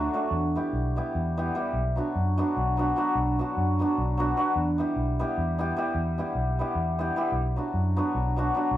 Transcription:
Already playing: F#3
0.14 F#3 A3 D4 F#4
0.31 E2
0.55 G3 B3 E4 G4
0.73 B1
0.96 G3 B3 E4 G4
1.15 E2
1.37 G3 B3 E4 G4
1.55 G3 B3 E4 G4
1.73 B1
1.96 F#3 B3 D4 F#4
2.15 F#2
2.38 F#3 B3 D4 F#4
2.57 B1
2.77 F#3 B3 D4 F#4
2.96 F#3 B3 D4 F#4
3.15 B1
3.39 F#3 B3 D4 F#4
3.57 F#2
3.79 F#3 B3 D4 F#4
3.98 B1
4.17 F#3 B3 D4 F#4
4.37 F#3 B3 D4 F#4
4.56 E2
4.78 G3 B3 E4 G4
4.96 B1
5.19 G3 B3 E4 G4
5.38 E2
5.58 G3 B3 E4 G4
5.77 G3 B3 E4 G4
5.95 E2
6.18 G3 B3 E4 G4
6.35 B1
6.59 G3 B3 E4 G4
6.75 E2
6.99 G3 B3 E4 G4
7.16 G3 B3 E4 G4
7.32 B1
7.56 F#3 B3 D4 F#4
7.74 F#2
7.96 F#3 B3 D4 F#4
8.15 B1
8.36 F#3 B3 D4 F#4
8.54 F#3 B3 D4 F#4
8.71 B1

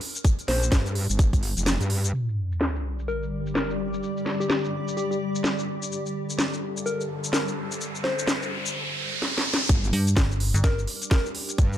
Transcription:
0.01 open hi-hat
0.15 closed hi-hat, shaker
0.25 kick, closed hi-hat, shaker
0.39 closed hi-hat, shaker
0.48 A#1 C5, snare, open hi-hat
0.62 closed hi-hat, shaker
0.72 G2, kick, snare, closed hi-hat, shaker
0.86 closed hi-hat, shaker
0.95 open hi-hat
1.09 G1, closed hi-hat, shaker
1.19 kick, closed hi-hat, shaker
1.33 G1, kick, closed hi-hat, shaker
1.43 open hi-hat
1.57 F1, closed hi-hat, shaker
1.66 snare, closed hi-hat, shaker
1.80 G2, closed hi-hat, shaker
1.90 open hi-hat
2.04 closed hi-hat, shaker
2.13 D3 G3 G4 D5, sub drop, shaker
2.28 G4, shaker
2.36 D5
2.52 D6, shaker
2.61 snare, shaker
2.76 shaker
2.99 shaker
3.08 A#4, shaker
3.23 shaker
3.47 shaker
3.55 A#4, snare, shaker
3.70 shaker
3.94 shaker
4.03 shaker
4.17 shaker
4.26 snare
4.40 G4, shaker
4.50 G4, snare, shaker
4.65 shaker
4.88 shaker
4.97 G4, shaker
5.11 G4, shaker
5.35 shaker
5.44 snare, shaker
5.59 shaker
5.83 shaker
5.91 A4, riser, shaker
6.06 shaker
6.30 shaker
6.39 snare, shaker
6.53 shaker
6.57 C5
6.77 shaker
6.86 A#4 E6, shaker
7.01 shaker
7.24 shaker
7.33 A#4, snare, shaker
7.48 shaker
7.72 shaker
7.81 shaker
7.95 shaker
8.04 C5, snare
8.19 shaker
8.28 snare, shaker
8.42 shaker
8.66 shaker
9.22 snare
9.38 snare
9.54 snare
9.69 G1 G3 D4 G4, kick, closed hi-hat, shaker
9.84 D6, shaker
9.89 G2 D5, open hi-hat
10.07 closed hi-hat, shaker
10.17 G1, kick, snare, closed hi-hat, shaker
10.31 shaker
10.40 open hi-hat
10.54 G1, closed hi-hat, shaker
10.64 A#4, kick, snare, closed hi-hat, shaker
10.79 shaker
10.87 open hi-hat
11.02 closed hi-hat, shaker
11.11 A#4, kick, snare, closed hi-hat, shaker
11.26 shaker
11.35 open hi-hat
11.49 closed hi-hat, shaker
11.58 G2, kick, closed hi-hat, shaker
11.73 shaker

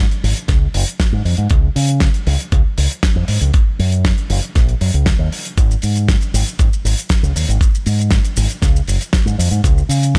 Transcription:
0.11 closed hi-hat
0.24 G#1, open hi-hat
0.37 closed hi-hat
0.48 C#2, kick, snare, closed hi-hat
0.74 F#1, open hi-hat
0.88 closed hi-hat
1.00 kick, snare, closed hi-hat
1.13 G#2
1.25 F2, open hi-hat
1.37 G#2, closed hi-hat
1.50 C#2, kick, closed hi-hat
1.76 C#3, open hi-hat
1.88 closed hi-hat
2.00 kick, snare, closed hi-hat
2.14 closed hi-hat
2.27 C#2, open hi-hat
2.40 closed hi-hat
2.52 C#2, kick, closed hi-hat
2.78 C#2, open hi-hat
2.91 closed hi-hat
3.03 kick, snare, closed hi-hat
3.16 F2
3.28 G#2, open hi-hat
3.41 C#2, closed hi-hat
3.54 kick, closed hi-hat
3.79 F#2, open hi-hat
3.92 closed hi-hat
4.05 kick, snare, closed hi-hat
4.18 closed hi-hat
4.30 F#1, open hi-hat
4.42 closed hi-hat
4.55 A#1, kick, snare, closed hi-hat
4.69 closed hi-hat
4.81 F#2, open hi-hat
4.94 C#2, closed hi-hat
5.06 kick, snare, closed hi-hat
5.19 D#2
5.32 open hi-hat
5.45 closed hi-hat
5.58 G#1, kick, closed hi-hat, shaker
5.71 shaker
5.82 G#2, open hi-hat, shaker
5.96 closed hi-hat, shaker
6.08 kick, snare, closed hi-hat, shaker
6.21 closed hi-hat, shaker
6.34 G#1, open hi-hat, shaker
6.46 closed hi-hat, shaker
6.59 G#1, kick, closed hi-hat, shaker
6.73 shaker
6.85 G#1, open hi-hat, shaker
6.98 closed hi-hat, shaker
7.09 kick, snare, closed hi-hat, shaker
7.23 C#2, shaker
7.35 D#2, open hi-hat, shaker
7.48 G#1, closed hi-hat, shaker
7.61 kick, closed hi-hat, shaker
7.75 shaker
7.86 G#2, open hi-hat, shaker
7.99 closed hi-hat, shaker
8.11 kick, snare, closed hi-hat, shaker
8.25 closed hi-hat, shaker
8.37 G#1, open hi-hat, shaker
8.50 closed hi-hat, shaker
8.62 C#2, kick, snare, closed hi-hat, shaker
8.76 shaker
8.88 F#1, open hi-hat, shaker
9.01 closed hi-hat, shaker
9.13 kick, snare, closed hi-hat, shaker
9.26 G#2, shaker
9.39 F2, open hi-hat, shaker
9.51 G#2, closed hi-hat, shaker
9.64 C#2, kick, closed hi-hat, shaker
9.78 shaker
9.89 C#3, open hi-hat, shaker
10.03 closed hi-hat, shaker
10.15 kick, closed hi-hat

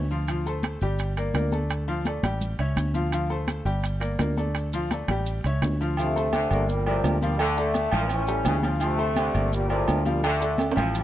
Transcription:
Already playing: D2
0.11 F3 F4 F5, maracas
0.28 F3 F4 F5, high conga, high timbale, maracas
0.46 A3 A4 C5, high conga, maracas
0.63 high conga, high timbale, maracas
0.81 G1 G3 G4 G5, high conga, maracas
0.98 high conga, high timbale, maracas
1.16 A#3 A#4 D5, high conga, high timbale, maracas
1.34 D2 A#3 A#4 D5, high conga, high timbale, low timbale, maracas
1.52 A3 A4 D5, high conga, maracas
1.69 high conga, high timbale, maracas
1.88 F3 F4 F5, high conga
2.05 A3 A4 D5, high conga, high timbale, maracas
2.23 A1 G3 G4 G5, high conga, low conga, high timbale, maracas
2.41 high conga, low conga, maracas
2.59 C#2 C#4 C#5 E5, high conga, high timbale
2.76 D2, high conga, high timbale, maracas
2.94 F3 F4 F5, high conga, maracas
3.12 F3 F4 F5, high conga, high timbale, maracas
3.30 A3 A4 C5, high conga
3.48 high conga, high timbale, maracas
3.65 G1 G3 G4 G5, high conga, maracas
3.83 high conga, high timbale, maracas
4.00 A#3 A#4 D5, high conga, high timbale, maracas
4.18 D2 A#3 A#4 D5, high conga, high timbale, low timbale, maracas
4.37 A3 A4 D5, high conga, maracas
4.55 high conga, high timbale, maracas
4.73 F3 F4 F5, high conga, maracas
4.91 A3 A4 D5, high conga, high timbale, maracas
5.08 A1 G3 G4 G5, high conga, low conga, high timbale, maracas
5.26 high conga, maracas
5.44 C#2 C#4 C#5 E5, high conga, high timbale, maracas
5.62 D2, high conga, high timbale, low timbale, maracas
5.81 F3 F4 F5, maracas
5.97 C3 F3 A3 F4 F5, high conga, low agogo, maracas
6.16 A3 A4 C5, high conga, maracas
6.33 D3, high conga, low timbale, low agogo, maracas
6.51 G1 A#3 A#4 D5, high conga, low agogo, maracas
6.68 A#2 G3, high conga, maracas
6.84 A2 C3 F3 G3 A#4 D5, high conga, low agogo
7.04 D2, high conga, low timbale, low agogo, maracas
7.20 A#2 F3 G3 F4 F5, high conga, maracas
7.38 D3 A3 A4 D5, low agogo, maracas
7.57 A3 A4 D5, high conga, maracas
7.74 high conga, low timbale, low agogo, maracas
7.92 A1 F3 E4 E5, high conga, low conga, low agogo, maracas
8.09 E3 C#4, high conga, low agogo, maracas
8.27 G3 G4 A4, high conga, maracas
8.45 D2 C#3, high conga, low timbale, low agogo, maracas
8.62 F3 F4 F5, high conga, low agogo, maracas
8.80 C3 F3 A3 F4 F5, high conga, low agogo, maracas
8.97 A3 A4 C5, high conga
9.16 D3, high conga, low timbale, low agogo, maracas
9.34 G1 A#3 A#4 D5, high conga, low agogo, maracas
9.52 A#2 G3, high conga, maracas
9.69 C3 F3 G3 A#4 D5, high conga, low agogo
9.73 A2
9.88 D2, high conga, low timbale, low agogo, maracas
10.04 A#2 F3 G3 F4 F5, high conga, maracas
10.22 D3 A3 A4 D5, low agogo, maracas
10.40 A3 A4 D5, high conga, maracas
10.58 high conga, high timbale, low agogo, maracas
10.71 high timbale
10.76 A1 F3 E4 E5, high conga, low conga, low agogo, maracas
10.93 C#3 G3, high conga, low agogo, maracas

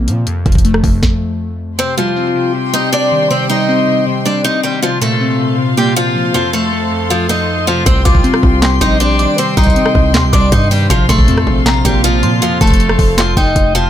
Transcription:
Already playing: C3 A#3 C4
0.08 A#2 F3, closed hi-hat
0.27 F2, closed hi-hat
0.46 F1 F3, kick, closed hi-hat
0.52 kick, closed hi-hat
0.58 closed hi-hat
0.65 A3, closed hi-hat
0.74 cross-stick
0.84 F1 F2, kick, open hi-hat
1.03 kick, snare
1.79 C3 C4 G4 C5 G5 C6
1.97 F3 G3 F4
2.16 C4
2.36 C3
2.55 C3
2.74 G3 D#4 D#5
2.93 D4 D5
3.12 D#3
3.30 C3 C4 C5
3.50 G3 D#4 D#5
3.69 C4
3.88 C3
4.06 C3
4.25 G3 D4 D5
4.44 D#4 D#5
4.63 D#3 G3 G4
4.82 C3 F3 F4 C5 F5 C6
5.01 A#2 A3 A4
5.21 C4
5.40 C3
5.58 C3
5.77 G3 A#3 G4
5.96 F3 F4
6.16 F3
6.34 F2 F3 F4 A4
6.53 F3 A3 A4
6.72 A3
6.91 F2
7.10 F2 F3 F4
7.29 F3 D#4 D#5
7.67 C3 F3 F4
7.86 C2 C3 C4 G4 C5 G5, kick, closed hi-hat
8.05 C2 F3 G3 F4 D6, kick, closed hi-hat
8.15 kick
8.24 C4, closed hi-hat
8.34 cross-stick
8.43 C2 C3, kick
8.62 C3 C6, snare, clap, closed hi-hat
8.81 A#1 G3 D#4 D#5, kick, closed hi-hat
9.00 D4 D5, closed hi-hat
9.19 D#3 D6, closed hi-hat
9.38 C3 C4 C5, closed hi-hat
9.57 C2 G3 D#4 D#5 A#5, kick, closed hi-hat
9.63 kick, closed hi-hat
9.70 closed hi-hat
9.76 C4, closed hi-hat
9.86 cross-stick
9.95 C2 C3, kick
10.14 D#2 C3 C6, snare, clap, closed hi-hat
10.24 C2
10.33 C2 G3 D4 D5 D6, kick
10.52 G2 D#4 D#5, kick, closed hi-hat
10.71 D#3 G3 G4, open hi-hat
10.90 A#1 C3 F3 F4 C5 F5, kick, closed hi-hat
11.09 A#1 A#2 A3 A4 C6, kick, closed hi-hat
11.19 kick
11.28 F2 C4, closed hi-hat
11.38 cross-stick
11.47 A#1 C3, kick
11.66 C3 A#5, snare, clap, closed hi-hat
11.85 A#1 G3 A#3 G4, kick, closed hi-hat
12.04 F3 F4, closed hi-hat
12.23 A#2 F3 C6, closed hi-hat
12.42 F2 F3 F4 A4, closed hi-hat
12.61 F1 F3 A3 A4 A5, kick, closed hi-hat
12.67 kick, closed hi-hat
12.74 closed hi-hat
12.80 A3, closed hi-hat
12.89 cross-stick
12.99 F1 F2, kick, open hi-hat
13.18 F2 F3 F4 C6, snare, clap, closed hi-hat
13.37 F1 F3 D#4 D#5 G5, kick
13.56 F1, kick, closed hi-hat
13.75 C3 F3 F4 A5, closed hi-hat

